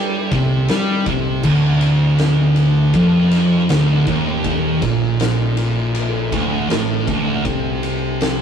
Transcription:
Already playing: picked electric bass G2, distorted electric guitar G3
0.31 picked electric bass C2, distorted electric guitar C3, kick, ride
0.68 picked electric bass G2, distorted electric guitar G3, snare, ride
1.06 picked electric bass C2, distorted electric guitar C3, kick, ride
1.43 picked electric bass D1, distorted electric guitar D2, kick, crash
1.81 ride
2.18 snare, ride
2.56 ride
2.94 picked electric bass F1, distorted electric guitar F2, kick, ride
3.31 snare, ride
3.69 picked electric bass D1, distorted electric guitar D2, snare, ride
4.07 picked electric bass D#1, distorted electric guitar D#2, kick, ride
4.44 kick, ride
4.82 picked electric bass A#1, distorted electric guitar A#2, kick, ride
5.20 snare, ride
5.57 ride
5.95 ride
6.32 picked electric bass D1, distorted electric guitar D2, kick, ride
6.70 picked electric bass A1, distorted electric guitar A2, snare, ride
7.07 picked electric bass D1, distorted electric guitar D2, kick, ride
7.45 picked electric bass C2, distorted electric guitar C3, kick, ride
7.83 ride
8.21 snare, ride

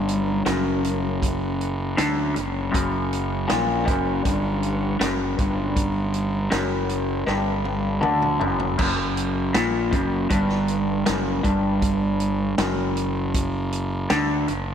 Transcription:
Already playing: fingered electric bass G1, clean electric guitar G2, synth drone F#3 C#4
0.08 closed hi-hat
0.46 fingered electric bass F#1, clean electric guitar F#2, snare, closed hi-hat
0.84 closed hi-hat
1.23 kick, closed hi-hat
1.61 closed hi-hat
1.97 fingered electric bass D2, clean electric guitar D3, snare, closed hi-hat
2.34 fingered electric bass F#1, clean electric guitar F#2, closed hi-hat
2.72 fingered electric bass F#1, clean electric guitar F#2, kick, closed hi-hat
3.13 closed hi-hat
3.48 fingered electric bass A#1, clean electric guitar A#2, snare, closed hi-hat
3.85 fingered electric bass F#1, clean electric guitar F#2, kick, closed hi-hat
4.24 fingered electric bass G1, clean electric guitar G2, kick, closed hi-hat
4.63 closed hi-hat
5.00 fingered electric bass F#1, clean electric guitar F#2, snare, closed hi-hat
5.38 fingered electric bass G1, clean electric guitar G2, kick, closed hi-hat
5.77 kick, closed hi-hat
6.14 closed hi-hat
6.50 fingered electric bass F#1, clean electric guitar F#2, snare, closed hi-hat
6.89 closed hi-hat
7.27 fingered electric bass G1, clean electric guitar G2, snare
7.65 high tom
8.01 fingered electric bass D2, clean electric guitar D3, mid tom
8.22 mid tom
8.40 fingered electric bass F#1, clean electric guitar F#2, floor tom
8.60 floor tom
8.78 fingered electric bass F#1, clean electric guitar F#2, kick, crash
9.17 closed hi-hat
9.54 fingered electric bass A#1, clean electric guitar A#2, snare, closed hi-hat
9.91 fingered electric bass F#1, clean electric guitar F#2, kick, closed hi-hat
10.30 fingered electric bass G1, clean electric guitar G2, kick, closed hi-hat
10.49 snare
10.68 closed hi-hat
11.06 fingered electric bass F#1, clean electric guitar F#2, snare, closed hi-hat
11.43 fingered electric bass G1, clean electric guitar G2, kick, closed hi-hat
11.82 kick, closed hi-hat
12.20 closed hi-hat
12.58 fingered electric bass F#1, clean electric guitar F#2, snare, closed hi-hat
12.97 closed hi-hat
13.34 kick, closed hi-hat
13.72 closed hi-hat
14.10 fingered electric bass D2, clean electric guitar D3, snare, closed hi-hat
14.48 fingered electric bass F#1, clean electric guitar F#2, closed hi-hat

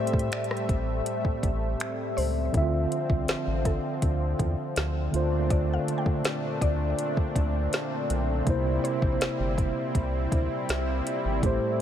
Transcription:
Already playing: tine electric piano A2 A3 G4 C5, analog synth pad G3 A3 C4 E5
0.07 closed hi-hat
0.13 analog synth bass A2, kick
0.19 closed hi-hat
0.32 synth pluck D5, finger snap, closed hi-hat
0.44 closed hi-hat
0.51 cross-stick
0.57 closed hi-hat
0.69 analog synth bass A1, kick, closed hi-hat
1.06 closed hi-hat
1.25 analog synth bass A1, kick
1.43 analog synth bass A1, kick, closed hi-hat
1.80 finger snap, closed hi-hat
2.17 analog synth bass C#2, synth pluck C5, open hi-hat
2.52 analog synth bass D2, tine electric piano D3 C4 E4, analog synth pad D3 F3 C4, kick, closed hi-hat
2.58 tine electric piano E5
2.62 tine electric piano F4
2.92 closed hi-hat
3.10 analog synth bass C2, kick
3.28 analog synth bass A1, snare, closed hi-hat
3.47 analog synth bass A1
3.65 synth pluck A4, kick, closed hi-hat
4.02 analog synth bass D2, kick, closed hi-hat
4.39 analog synth bass E2, kick, closed hi-hat
4.76 analog synth bass D2, snare, closed hi-hat
5.11 analog synth bass D2, analog synth pad A#2 A3 C4 D4, tine electric piano D3 A3 F4, closed hi-hat
5.16 tine electric piano C5
5.50 synth pluck D5, kick, closed hi-hat
5.74 synth pluck F5
5.88 analog synth bass D3, closed hi-hat
5.98 synth pluck G5
6.06 analog synth bass D3, kick
6.25 snare, closed hi-hat
6.61 analog synth bass D2, synth pluck D5, kick, closed hi-hat
6.99 closed hi-hat
7.17 analog synth bass D2, kick
7.36 analog synth bass D2, kick, closed hi-hat
7.73 snare, closed hi-hat
8.10 analog synth bass B1, closed hi-hat
8.45 analog synth bass C2, tine electric piano C3 A#3 E4, analog synth pad G3 E4, kick, closed hi-hat
8.50 tine electric piano C5
8.84 synth pluck C5, closed hi-hat
9.02 analog synth bass A#1, kick
9.21 analog synth bass G1, snare, closed hi-hat
9.39 analog synth bass G1
9.58 kick, closed hi-hat
9.95 analog synth bass C2, kick, closed hi-hat
10.32 analog synth bass D2, kick, closed hi-hat
10.69 analog synth bass C2, snare, closed hi-hat
11.07 closed hi-hat
11.25 analog synth bass G#1
11.41 analog synth bass A1, tine electric piano A2 A3 G4, analog synth pad A3, kick, closed hi-hat
11.46 tine electric piano C5

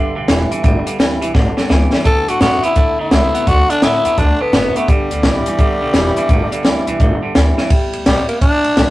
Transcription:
Already playing: upright bass G1, clean electric guitar G2 D3, steel-string acoustic guitar D3
0.15 upright bass B1, clean electric guitar G2 D3
0.28 upright bass E1, clean electric guitar G2 E3, steel-string acoustic guitar G3 B3 E4, snare, closed hi-hat
0.51 clean electric guitar G2 E3, steel-string acoustic guitar B3 E4, muted upright bass stroke, closed hi-hat
0.63 upright bass G1, clean electric guitar G2 D3, steel-string acoustic guitar G3, kick, closed hi-hat
0.86 clean electric guitar G2 D3, muted upright bass stroke, closed hi-hat
0.98 upright bass D2, clean electric guitar G2 E3, steel-string acoustic guitar G3 B3 E4, snare, closed hi-hat
1.21 upright bass B1, clean electric guitar G2 E3, steel-string acoustic guitar B3 E4, closed hi-hat
1.34 upright bass G1, clean electric guitar G2 D3, steel-string acoustic guitar B2, kick, snare
1.57 clean electric guitar G2 D3, muted upright bass stroke, snare
1.69 upright bass C#2, clean electric guitar G2 E3, steel-string acoustic guitar E3, snare
1.93 clean electric guitar G2 E3, snare
2.04 upright bass D2, clean electric guitar D3 A3, steel-string acoustic guitar D3, tenor saxophone A4, kick, closed hi-hat
2.28 upright bass A2, clean electric guitar D3 A3, tenor saxophone F#4, closed hi-hat
2.40 upright bass F#2, steel-string acoustic guitar D3 A3 B3 F#4, clean electric guitar D3 B3, tenor saxophone F#4, snare, closed hi-hat
2.63 clean electric guitar D3 B3, steel-string acoustic guitar B3 F#4, tenor saxophone E4, muted upright bass stroke, closed hi-hat
2.76 upright bass D2, steel-string acoustic guitar A2, clean electric guitar D3 A3, kick, closed hi-hat
2.99 upright bass F#2, clean electric guitar D3 A3, tenor saxophone E4
3.11 upright bass C2, steel-string acoustic guitar D3 A3 B3 F#4, clean electric guitar D3 B3, snare, closed hi-hat
3.34 clean electric guitar D3 B3, steel-string acoustic guitar B3 F#4, muted upright bass stroke, closed hi-hat
3.47 upright bass D2, clean electric guitar D3 A3, steel-string acoustic guitar D3, tenor saxophone F#4, kick, closed hi-hat
3.69 clean electric guitar D3 A3, tenor saxophone D4, closed hi-hat
3.82 upright bass A2, steel-string acoustic guitar D3 A3 B3 F#4, clean electric guitar D3 B3, tenor saxophone E4, snare, closed hi-hat
4.05 upright bass F#2, clean electric guitar D3 B3, steel-string acoustic guitar B3 F#4, closed hi-hat
4.18 upright bass D2, steel-string acoustic guitar A2, clean electric guitar D3 A3, tenor saxophone D4, kick, closed hi-hat
4.40 clean electric guitar D3 A3, tenor saxophone B3
4.52 upright bass F#1, steel-string acoustic guitar D3 A3 B3 F#4, clean electric guitar D3 B3, snare, closed hi-hat
4.75 clean electric guitar D3 B3, tenor saxophone A3, steel-string acoustic guitar B3 F#4, muted upright bass stroke, closed hi-hat
4.88 upright bass G1, clean electric guitar G2 D3, steel-string acoustic guitar G3, tenor saxophone G3, kick, closed hi-hat
5.11 upright bass D2, clean electric guitar G2 D3, closed hi-hat
5.23 upright bass B1, clean electric guitar G2 E3, steel-string acoustic guitar G3 B3 E4, snare, closed hi-hat
5.46 clean electric guitar G2 E3, steel-string acoustic guitar B3 E4, closed hi-hat
5.59 upright bass G1, clean electric guitar G2 D3, steel-string acoustic guitar D3, kick, closed hi-hat
5.81 upright bass B1, clean electric guitar G2 D3
5.93 upright bass E1, clean electric guitar G2 E3, steel-string acoustic guitar G3 B3 E4, snare, closed hi-hat
6.16 clean electric guitar G2 E3, steel-string acoustic guitar B3 E4, muted upright bass stroke, closed hi-hat
6.29 upright bass G1, clean electric guitar G2 D3, steel-string acoustic guitar G3, kick, closed hi-hat
6.52 clean electric guitar G2 D3, muted upright bass stroke, closed hi-hat
6.63 upright bass D2, clean electric guitar G2 E3, steel-string acoustic guitar G3 B3 E4, snare, closed hi-hat
6.86 upright bass B1, clean electric guitar G2 E3, steel-string acoustic guitar B3 E4, closed hi-hat
7.00 upright bass G1, clean electric guitar G2 D3, steel-string acoustic guitar D3, kick, closed hi-hat
7.22 clean electric guitar G2 D3, muted upright bass stroke
7.35 upright bass D2, clean electric guitar G2 E3, steel-string acoustic guitar G3 B3 E4, snare, closed hi-hat
7.57 clean electric guitar G2 E3, steel-string acoustic guitar B3 E4, snare
7.70 upright bass G1, steel-string acoustic guitar G3, kick, ride
7.93 upright bass D2, ride
8.06 upright bass B1, steel-string acoustic guitar G3 B3 E4, tenor saxophone G3, snare, ride
8.28 tenor saxophone A#3, steel-string acoustic guitar B3 E4, muted upright bass stroke, ride
8.41 upright bass G1, steel-string acoustic guitar A2, tenor saxophone D4, kick, ride
8.64 upright bass B1, ride
8.77 upright bass B1, steel-string acoustic guitar D3, snare, ride

